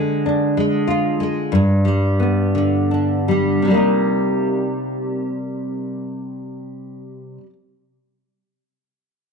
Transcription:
0.00 1.53 D3 medium
0.00 0.56 G#3 soft
0.26 1.59 D4 soft
0.57 1.19 G#3 soft
0.88 1.59 F4 soft
1.20 1.59 G#3 soft
1.52 3.67 G2 medium
1.85 3.28 G3 soft
2.20 3.71 B3 soft
2.55 3.62 D3 soft
2.91 3.74 D4 soft
3.28 3.67 G3 soft
3.62 7.37 C3 soft
3.68 7.43 G3 soft
3.68 7.46 A#3 medium
3.75 7.50 D#4 soft

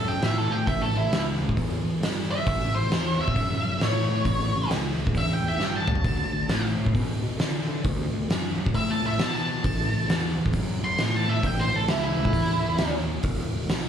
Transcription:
0.05 0.19 F#2 medium
0.05 0.23 G5 medium
0.21 0.46 A2 medium
0.21 0.37 E5 medium
0.21 snare loud
0.21 open hi-hat medium
0.38 0.52 A4 medium
0.49 0.64 A2 medium
0.49 0.67 G5 medium
0.67 0.91 A1 medium
0.67 0.82 E5 medium
0.67 kick loud
0.67 open hi-hat medium
0.82 0.97 A4 medium
0.95 1.09 A1 medium
0.95 1.21 E4 medium
1.11 1.36 C#2 medium
1.11 snare loud
1.11 open hi-hat medium
1.39 1.54 C#2 medium
1.49 kick medium
1.57 1.81 E2 medium
1.57 kick medium
1.57 open hi-hat medium
1.84 1.98 E2 medium
2.00 2.39 G2 medium
2.00 snare loud
2.00 open hi-hat medium
2.31 2.74 E5 loud
2.47 2.71 A1 medium
2.47 kick loud
2.47 open hi-hat medium
2.74 2.88 A1 medium
2.74 3.18 C5 loud
2.90 3.15 E2 medium
2.90 snare loud
2.90 open hi-hat medium
3.19 3.33 E2 medium
3.19 3.80 E5 loud
3.28 kick medium
3.36 3.60 F#2 medium
3.36 kick medium
3.36 open hi-hat medium
3.64 3.78 F#2 medium
3.80 4.05 A2 medium
3.80 4.69 C#5 medium
3.80 snare loud
3.80 open hi-hat medium
4.09 4.23 A2 medium
4.25 4.50 A1 medium
4.25 kick loud
4.25 open hi-hat medium
4.54 4.68 A1 medium
4.69 4.94 C#2 medium
4.69 snare loud
4.69 open hi-hat medium
4.98 5.12 C#2 medium
5.07 kick medium
5.14 5.39 E2 medium
5.14 5.31 E5 loud
5.14 kick medium
5.14 open hi-hat medium
5.33 5.46 G5 medium
5.42 5.57 E2 medium
5.48 5.61 E5 medium
5.59 5.97 G2 medium
5.59 snare medium
5.65 5.76 G5 medium
5.77 6.63 A5 medium
5.88 mid tom medium
5.95 floor tom medium
6.04 6.29 D2 medium
6.04 kick loud
6.04 open hi-hat medium
6.32 6.47 D2 medium
6.49 6.74 A2 medium
6.49 snare loud
6.49 open hi-hat medium
6.77 6.91 A2 medium
6.86 kick medium
6.95 7.19 B2 medium
6.95 kick medium
6.95 open hi-hat medium
7.22 7.36 B2 medium
7.39 7.63 D3 medium
7.39 snare loud
7.39 open hi-hat medium
7.68 7.82 D3 medium
7.84 8.09 D2 medium
7.84 kick loud
7.84 open hi-hat medium
8.13 8.27 D2 medium
8.29 8.53 F#2 medium
8.29 snare loud
8.29 open hi-hat medium
8.58 8.72 F#2 medium
8.66 kick medium
8.74 8.98 A2 medium
8.74 8.89 E5 loud
8.74 kick medium
8.74 open hi-hat medium
8.90 9.04 A5 medium
9.03 9.17 A2 medium
9.03 9.20 E5 medium
9.19 9.57 B2 medium
9.19 9.35 A5 medium
9.19 snare loud
9.19 open hi-hat medium
9.36 10.22 A5 medium
9.64 9.88 A1 medium
9.64 kick loud
9.64 open hi-hat medium
9.92 10.06 A1 medium
10.09 10.33 E2 medium
10.09 snare loud
10.09 open hi-hat medium
10.37 10.51 E2 medium
10.46 kick medium
10.53 10.78 F#2 medium
10.53 kick medium
10.53 open hi-hat medium
10.84 10.97 F#2 medium
10.84 11.13 C6 loud
10.98 11.24 A2 medium
10.98 snare loud
10.98 open hi-hat medium
11.16 11.30 A5 medium
11.28 11.42 A2 medium
11.28 11.44 E5 medium
11.43 11.68 A1 medium
11.43 11.60 G5 medium
11.43 kick loud
11.43 open hi-hat medium
11.60 11.76 C5 loud
11.73 11.87 A1 medium
11.73 11.90 A4 medium
11.88 12.13 C#2 medium
11.88 12.03 E4 loud
11.88 snare loud
11.88 open hi-hat medium
12.05 12.92 E4 medium
12.18 12.32 C#2 medium
12.25 kick medium
12.33 12.58 E2 medium
12.33 kick medium
12.33 open hi-hat medium
12.63 12.77 E2 medium
12.78 13.18 D#2 medium
12.78 snare loud
12.78 open hi-hat medium
13.23 13.48 E1 medium
13.23 kick loud
13.23 open hi-hat medium
13.54 13.67 E1 medium
13.69 13.89 B1 medium
13.69 snare loud
13.69 open hi-hat medium

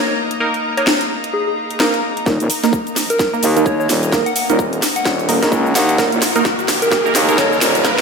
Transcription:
0.00 8.02 A#3 medium
0.00 8.02 D#4 medium
0.00 2.27 D#5 medium
0.00 8.02 A#5 medium
0.08 0.14 C#5 medium
0.31 closed hi-hat medium
0.40 0.56 A#3 medium
0.40 0.56 D#4 medium
0.40 0.56 A#4 loud
0.54 closed hi-hat soft
0.77 0.89 A#3 medium
0.77 0.89 D#4 medium
0.77 0.89 A#4 medium
0.77 0.89 C#5 medium
0.77 closed hi-hat medium
0.87 snare loud
1.01 closed hi-hat soft
1.24 closed hi-hat medium
1.33 1.42 G#4 medium
1.47 1.53 G#4 medium
1.71 closed hi-hat medium
1.80 1.95 A#3 medium
1.80 1.95 D#4 medium
1.80 1.95 A#4 medium
1.80 snare loud
1.94 closed hi-hat soft
2.17 closed hi-hat medium
2.26 2.38 D#1 medium
2.26 2.48 A#3 medium
2.26 2.48 D#4 medium
2.26 2.48 A#4 loud
2.26 kick loud
2.26 snare soft
2.26 riser medium
2.26 shaker soft
2.40 2.48 D#1 loud
2.40 closed hi-hat medium
2.40 shaker soft
2.50 open hi-hat loud
2.50 shaker medium
2.64 2.75 A#3 medium
2.64 2.75 D#4 medium
2.64 2.75 A#4 medium
2.64 snare soft
2.64 closed hi-hat medium
2.64 shaker soft
2.73 kick loud
2.73 shaker soft
2.87 6.90 D#5 medium
2.87 closed hi-hat medium
2.87 shaker soft
2.96 snare medium
2.96 open hi-hat loud
2.96 shaker medium
3.10 3.57 A#4 loud
3.10 closed hi-hat medium
3.10 shaker soft
3.19 kick loud
3.19 snare soft
3.19 shaker soft
3.33 3.45 A#3 medium
3.33 3.45 D#4 medium
3.33 3.45 A#4 medium
3.33 shaker soft
3.43 3.88 D#2 medium
3.43 open hi-hat loud
3.43 shaker medium
3.57 3.78 A#3 medium
3.57 3.78 D#4 medium
3.57 3.78 A#4 loud
3.57 closed hi-hat medium
3.57 shaker soft
3.66 3.75 C#5 medium
3.66 kick loud
3.66 shaker soft
3.80 3.86 C#5 medium
3.80 shaker soft
3.89 4.24 D#1 loud
3.89 snare medium
3.89 open hi-hat loud
3.89 shaker medium
4.03 closed hi-hat medium
4.03 shaker soft
4.12 4.28 A#3 medium
4.12 4.28 D#4 medium
4.12 4.28 A#4 loud
4.12 kick loud
4.12 snare medium
4.12 shaker soft
4.26 4.32 F#5 medium
4.26 closed hi-hat medium
4.26 shaker soft
4.36 4.45 F#5 medium
4.36 open hi-hat loud
4.36 shaker medium
4.50 4.81 D#1 loud
4.50 4.61 A#3 medium
4.50 4.61 D#4 medium
4.50 4.61 A#4 medium
4.50 closed hi-hat medium
4.50 shaker soft
4.59 kick loud
4.59 shaker soft
4.73 closed hi-hat medium
4.73 shaker soft
4.82 snare medium
4.82 open hi-hat loud
4.82 shaker medium
4.96 5.08 F#5 medium
4.96 closed hi-hat medium
4.96 shaker soft
5.05 5.40 D#1 loud
5.05 kick loud
5.05 snare medium
5.05 shaker soft
5.19 closed hi-hat soft
5.19 shaker soft
5.29 5.39 A#3 medium
5.29 5.39 D#4 medium
5.29 5.39 A#4 medium
5.29 open hi-hat loud
5.29 shaker medium
5.43 5.74 C#2 medium
5.43 5.96 A#3 medium
5.43 5.96 D#4 medium
5.43 5.96 A#4 medium
5.43 kick medium
5.43 snare medium
5.43 closed hi-hat medium
5.43 shaker soft
5.52 kick loud
5.52 shaker soft
5.66 shaker soft
5.75 5.97 D#2 medium
5.75 6.22 F#5 medium
5.75 snare medium
5.75 open hi-hat loud
5.75 shaker medium
5.89 closed hi-hat medium
5.89 shaker soft
5.98 6.10 D#1 loud
5.98 6.21 A#3 medium
5.98 6.21 D#4 medium
5.98 6.21 A#4 loud
5.98 kick loud
5.98 snare medium
5.98 shaker soft
6.12 6.20 D#1 loud
6.12 closed hi-hat medium
6.12 shaker soft
6.22 snare medium
6.22 open hi-hat loud
6.22 shaker medium
6.36 6.47 A#3 medium
6.36 6.47 D#4 medium
6.36 6.47 A#4 loud
6.36 closed hi-hat medium
6.36 shaker soft
6.45 kick loud
6.45 snare medium
6.45 shaker soft
6.59 closed hi-hat soft
6.59 shaker soft
6.68 snare medium
6.68 open hi-hat loud
6.68 shaker medium
6.77 8.02 F5 medium
6.82 7.29 A#4 loud
6.82 closed hi-hat medium
6.82 shaker soft
6.91 kick loud
6.91 snare medium
6.91 shaker soft
7.05 7.17 A#3 medium
7.05 7.17 D#4 medium
7.05 7.17 A#4 loud
7.05 shaker soft
7.15 7.60 D#2 medium
7.15 snare medium
7.15 open hi-hat loud
7.15 shaker medium
7.29 7.50 A#3 medium
7.29 7.50 D#4 medium
7.29 7.50 A#4 medium
7.29 closed hi-hat medium
7.29 shaker soft
7.38 7.47 C#5 medium
7.38 kick loud
7.38 snare medium
7.38 shaker soft
7.52 7.58 C#5 medium
7.52 shaker soft
7.61 7.96 D#1 loud
7.61 snare medium
7.61 open hi-hat loud
7.61 shaker medium
7.75 closed hi-hat medium
7.75 shaker soft
7.84 8.00 A#3 loud
7.84 8.00 D#4 medium
7.84 8.00 A#4 loud
7.84 kick loud
7.84 snare medium
7.84 shaker soft
7.98 snare medium
7.98 closed hi-hat soft

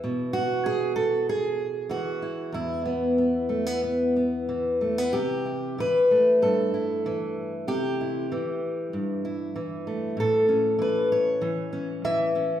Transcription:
0.00 1.91 B2 medium
0.00 1.89 E3 medium
0.00 0.36 E4 soft
0.33 1.28 F#4 medium
0.66 0.95 G#4 loud
0.96 1.28 A4 medium
1.29 2.54 G#4 medium
1.89 4.47 E3 medium
1.89 2.54 F#4 medium
2.22 2.54 E4 soft
2.52 5.12 E2 medium
2.52 5.13 E4 medium
2.85 3.17 B3 soft
3.18 3.49 B3 soft
3.49 3.66 A3 soft
3.66 3.82 B3 soft
3.84 4.15 B3 soft
4.16 4.81 B3 soft
4.49 5.77 E3 medium
4.81 4.98 A3 soft
4.98 5.14 B3 soft
5.13 5.78 C3 medium
5.13 5.77 G4 medium
5.46 6.74 E4 soft
5.78 7.05 E3 medium
5.78 6.42 B4 medium
6.11 9.86 A3 soft
6.42 7.64 G2 medium
6.42 7.68 A4 medium
6.74 8.01 E4 soft
7.06 8.31 E3 medium
7.68 8.30 C3 medium
7.68 9.24 G4 loud
8.01 9.24 E4 soft
8.32 9.55 E3 medium
8.93 10.14 G2 medium
9.25 10.20 E4 soft
9.56 10.78 E3 medium
9.87 10.48 A3 soft
10.17 12.60 A2 medium
10.17 11.43 A4 medium
10.49 11.72 C#4 soft
10.79 11.41 E3 medium
10.79 11.11 B4 medium
11.12 12.60 C#5 medium
11.41 12.05 E3 medium
11.73 12.35 C#4 soft
12.05 12.60 E3 medium
12.05 12.60 E5 loud
12.35 12.60 C#4 soft

